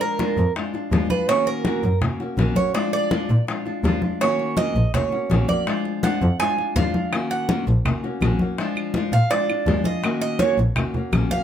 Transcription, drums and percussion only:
0.01 high bongo, high conga
0.19 high bongo, high conga
0.37 high bongo, high conga
0.56 high bongo, high conga
0.74 high bongo, high conga
0.92 high bongo, low bongo, high conga
1.10 high conga
1.29 high bongo, high conga
1.46 high bongo, high conga
1.65 high bongo, high conga
1.83 high bongo, high conga
2.01 high bongo, high conga, low conga
2.20 high bongo, high conga
2.38 high bongo, low bongo, high conga
2.56 high conga
2.74 high bongo, high conga
2.93 high bongo, high conga
3.11 high bongo, high conga
3.29 high bongo, high conga
3.47 high bongo, high conga
3.66 high bongo, high conga
3.84 high bongo, low bongo, high conga
4.02 high conga
4.20 high bongo, high conga
4.39 high bongo, high conga
4.57 high bongo, high conga
4.75 high bongo, high conga
4.94 high bongo, high conga, low conga
5.12 high bongo, high conga
5.30 high bongo, low bongo, high conga
5.48 high conga
5.67 high bongo, high conga
5.84 high bongo, high conga
6.03 high bongo, high conga
6.21 high bongo, high conga
6.39 high bongo, high conga
6.58 high bongo, high conga
6.76 high bongo, low bongo, high conga
6.94 high conga
7.13 high bongo, high conga, claves
7.31 high bongo, high conga
7.49 high bongo, high conga
7.67 high bongo, high conga
7.85 high bongo, high conga, low conga, claves
8.04 high bongo, high conga
8.21 high bongo, low bongo, high conga, claves
8.39 high conga
8.58 high bongo, high conga
8.75 high bongo, high conga, claves
8.94 high bongo, high conga
9.12 high bongo, high conga
9.31 high bongo, high conga
9.48 high bongo, high conga, claves
9.66 high bongo, low bongo, high conga
9.84 high conga
10.03 high bongo, high conga, claves
10.21 high bongo, high conga
10.39 high bongo, high conga
10.58 high bongo, high conga
10.76 high bongo, high conga, low conga, claves
10.94 high bongo, high conga, low conga
11.13 high bongo, low bongo, high conga, claves
11.31 high conga

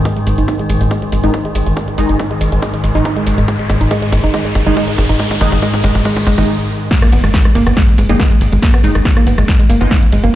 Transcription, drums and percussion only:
0.05 kick, closed hi-hat, shaker
0.17 closed hi-hat
0.27 open hi-hat, shaker
0.38 closed hi-hat, shaker
0.48 kick, closed hi-hat, shaker
0.59 closed hi-hat
0.70 open hi-hat, shaker
0.81 closed hi-hat, shaker
0.91 kick, closed hi-hat, shaker
1.02 closed hi-hat
1.12 open hi-hat, shaker
1.24 closed hi-hat, shaker
1.34 kick, closed hi-hat, shaker
1.45 closed hi-hat
1.55 open hi-hat, shaker
1.67 closed hi-hat, shaker
1.77 kick, closed hi-hat, shaker
1.88 closed hi-hat
1.98 open hi-hat, shaker
2.09 closed hi-hat, shaker
2.19 kick, closed hi-hat, shaker
2.31 closed hi-hat
2.41 open hi-hat, shaker
2.52 closed hi-hat, shaker
2.62 kick, closed hi-hat, shaker
2.74 closed hi-hat
2.84 open hi-hat, shaker
2.95 closed hi-hat, shaker
3.05 kick, closed hi-hat, shaker
3.17 closed hi-hat
3.27 open hi-hat, shaker
3.38 closed hi-hat, shaker
3.48 kick, closed hi-hat, shaker
3.59 closed hi-hat
3.70 kick, open hi-hat, shaker
3.81 closed hi-hat, shaker
3.91 kick, closed hi-hat, shaker
4.02 closed hi-hat
4.12 kick, open hi-hat, shaker
4.24 closed hi-hat, shaker
4.34 kick, closed hi-hat, shaker
4.45 closed hi-hat
4.55 kick, open hi-hat, shaker
4.67 closed hi-hat, shaker
4.77 kick, closed hi-hat, shaker
4.88 closed hi-hat
4.98 kick, open hi-hat, shaker
5.09 closed hi-hat, shaker
5.19 kick, closed hi-hat, shaker
5.31 kick, closed hi-hat, shaker
5.41 kick, open hi-hat, shaker
5.52 kick, closed hi-hat, shaker
5.62 kick, closed hi-hat, shaker
5.74 kick, closed hi-hat, shaker
5.84 kick, open hi-hat, shaker
5.95 kick, closed hi-hat, shaker
6.05 kick, closed hi-hat, shaker
6.17 kick, closed hi-hat, shaker
6.27 kick, open hi-hat, shaker
6.38 kick, closed hi-hat, shaker
6.91 kick, snare, closed hi-hat, crash, ride, shaker
7.02 cross-stick, closed hi-hat, ride
7.12 open hi-hat, ride, shaker
7.24 cross-stick, closed hi-hat, ride, shaker
7.34 kick, snare, closed hi-hat, shaker
7.45 cross-stick, closed hi-hat, ride
7.55 open hi-hat, ride, shaker
7.67 cross-stick, closed hi-hat, ride, shaker
7.77 kick, snare, closed hi-hat, ride, shaker
7.88 closed hi-hat, ride
7.98 open hi-hat, ride, shaker
8.09 closed hi-hat, ride, shaker
8.20 kick, snare, closed hi-hat, ride, shaker
8.31 closed hi-hat, ride
8.41 open hi-hat, ride, shaker
8.52 closed hi-hat, ride, shaker
8.62 kick, snare, closed hi-hat, ride, shaker
8.74 cross-stick, closed hi-hat, ride
8.84 open hi-hat, ride, shaker
8.95 cross-stick, closed hi-hat, ride, shaker
9.05 kick, snare, closed hi-hat, ride, shaker
9.17 cross-stick, closed hi-hat, ride
9.27 open hi-hat, ride, shaker
9.38 cross-stick, closed hi-hat, ride, shaker
9.48 kick, snare, closed hi-hat, ride, shaker
9.60 closed hi-hat, ride
9.70 open hi-hat, ride, shaker
9.81 closed hi-hat, ride, shaker
9.91 kick, snare, closed hi-hat, ride, shaker
10.02 closed hi-hat, ride
10.12 open hi-hat, ride, shaker
10.24 closed hi-hat, ride, shaker

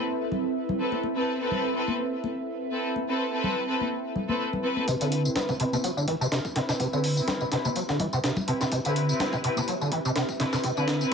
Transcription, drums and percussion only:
0.32 low conga
0.69 low conga
0.92 muted conga
1.03 muted conga
1.51 low conga
1.88 high conga
2.24 muted conga
2.96 muted conga
3.44 low conga
3.81 high conga
4.16 low conga
4.29 high conga
4.53 low conga
4.77 muted conga
4.88 kick, closed hi-hat, tambourine
5.01 closed hi-hat, tambourine
5.12 closed hi-hat
5.25 tambourine
5.36 snare, closed hi-hat, tambourine, low conga
5.49 kick, tambourine
5.60 closed hi-hat
5.73 tambourine, high conga
5.84 closed hi-hat, tambourine
5.97 tambourine
6.08 kick, closed hi-hat
6.21 tambourine
6.32 snare, closed hi-hat, tambourine
6.45 kick, tambourine
6.56 snare, closed hi-hat
6.69 snare, tambourine
6.80 kick, closed hi-hat, tambourine
6.93 tambourine
7.04 open hi-hat
7.17 tambourine
7.28 snare, closed hi-hat, tambourine, low conga
7.41 tambourine
7.52 snare, closed hi-hat
7.65 tambourine, high conga
7.76 closed hi-hat, tambourine
7.89 snare, tambourine
8.00 kick, closed hi-hat, low conga
8.13 tambourine
8.24 snare, closed hi-hat, tambourine
8.36 kick, tambourine, low conga
8.48 closed hi-hat
8.61 snare, tambourine
8.72 kick, closed hi-hat, tambourine
8.85 closed hi-hat, tambourine
8.96 closed hi-hat
9.09 tambourine
9.20 snare, closed hi-hat, tambourine, low conga
9.33 kick, tambourine
9.44 closed hi-hat
9.57 tambourine, high conga
9.68 closed hi-hat, tambourine
9.81 tambourine
9.92 kick, closed hi-hat
10.05 tambourine
10.16 snare, closed hi-hat, tambourine
10.29 kick, tambourine
10.40 snare, closed hi-hat
10.53 snare, tambourine
10.64 kick, closed hi-hat, tambourine
10.77 tambourine
10.88 snare, closed hi-hat
11.01 tambourine

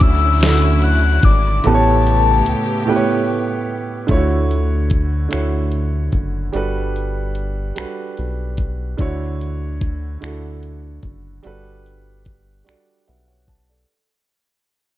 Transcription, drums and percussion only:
0.00 kick, closed hi-hat
0.41 snare, closed hi-hat
0.82 closed hi-hat
1.23 kick, closed hi-hat
1.64 closed hi-hat
2.07 closed hi-hat
2.46 closed hi-hat
4.08 kick, closed hi-hat
4.51 closed hi-hat
4.90 kick, closed hi-hat
5.31 finger snap, closed hi-hat
5.72 closed hi-hat
6.12 kick, closed hi-hat
6.54 closed hi-hat
6.96 closed hi-hat
7.35 closed hi-hat
7.76 finger snap, closed hi-hat
8.17 closed hi-hat
8.57 kick, closed hi-hat
8.98 kick, closed hi-hat
9.41 closed hi-hat
9.81 kick, closed hi-hat
10.22 finger snap, closed hi-hat
10.63 closed hi-hat
11.03 kick, closed hi-hat
11.44 closed hi-hat
11.86 closed hi-hat
12.25 kick, closed hi-hat
12.67 finger snap, closed hi-hat
13.08 closed hi-hat
13.48 kick, closed hi-hat

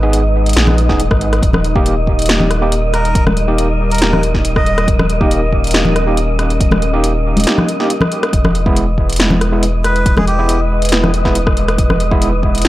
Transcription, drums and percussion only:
0.13 closed hi-hat
0.46 closed hi-hat
0.49 closed hi-hat
0.53 snare, closed hi-hat
0.57 closed hi-hat
0.67 cross-stick, low conga
0.78 closed hi-hat
0.89 kick, snare
1.00 closed hi-hat
1.11 kick, cross-stick
1.21 closed hi-hat
1.33 cross-stick, closed hi-hat
1.43 kick, closed hi-hat
1.53 cross-stick, low conga
1.64 closed hi-hat
1.76 kick
1.86 closed hi-hat
2.07 kick
2.19 closed hi-hat
2.22 closed hi-hat
2.26 snare, closed hi-hat
2.29 closed hi-hat
2.40 low conga
2.51 cross-stick, closed hi-hat
2.72 closed hi-hat
2.94 cross-stick, closed hi-hat
3.05 closed hi-hat
3.15 kick, closed hi-hat
3.27 cross-stick, high conga, low conga
3.37 closed hi-hat
3.58 closed hi-hat
3.91 closed hi-hat
3.95 closed hi-hat
3.98 snare, closed hi-hat
4.02 closed hi-hat
4.13 cross-stick, low conga
4.23 closed hi-hat
4.34 kick, snare
4.45 closed hi-hat
4.56 kick, cross-stick
4.66 closed hi-hat
4.78 cross-stick, closed hi-hat
4.88 kick, closed hi-hat
4.99 cross-stick, low conga
5.10 closed hi-hat
5.21 kick
5.31 closed hi-hat
5.53 kick
5.64 closed hi-hat
5.67 closed hi-hat
5.71 snare, closed hi-hat
5.74 closed hi-hat
5.85 low conga
5.96 cross-stick, closed hi-hat
6.17 closed hi-hat
6.39 cross-stick, closed hi-hat
6.50 closed hi-hat
6.60 kick, closed hi-hat
6.71 cross-stick, high conga, low conga
6.82 closed hi-hat
7.04 closed hi-hat
7.37 closed hi-hat, high conga
7.40 closed hi-hat
7.44 snare, closed hi-hat
7.47 closed hi-hat
7.58 cross-stick, low conga
7.69 closed hi-hat
7.80 snare
7.90 closed hi-hat
8.01 cross-stick, low conga
8.12 closed hi-hat
8.23 cross-stick, closed hi-hat
8.33 kick, closed hi-hat
8.45 cross-stick, low conga
8.55 closed hi-hat
8.66 kick
8.76 closed hi-hat
8.98 kick
9.10 closed hi-hat
9.13 closed hi-hat
9.16 snare, closed hi-hat
9.20 closed hi-hat
9.31 low conga
9.41 cross-stick, closed hi-hat
9.63 closed hi-hat
9.84 cross-stick, closed hi-hat
9.96 closed hi-hat
10.06 kick, closed hi-hat
10.17 cross-stick, high conga, low conga
10.27 closed hi-hat
10.49 closed hi-hat
10.82 closed hi-hat
10.85 closed hi-hat
10.89 snare, closed hi-hat
10.92 closed hi-hat
11.04 cross-stick, low conga
11.14 closed hi-hat
11.25 kick, snare
11.35 closed hi-hat
11.47 kick, cross-stick
11.57 closed hi-hat
11.68 cross-stick, closed hi-hat
11.78 kick, closed hi-hat
11.90 cross-stick, low conga
12.00 closed hi-hat
12.11 kick
12.22 closed hi-hat
12.43 kick
12.55 closed hi-hat
12.58 closed hi-hat
12.62 snare, closed hi-hat
12.65 closed hi-hat

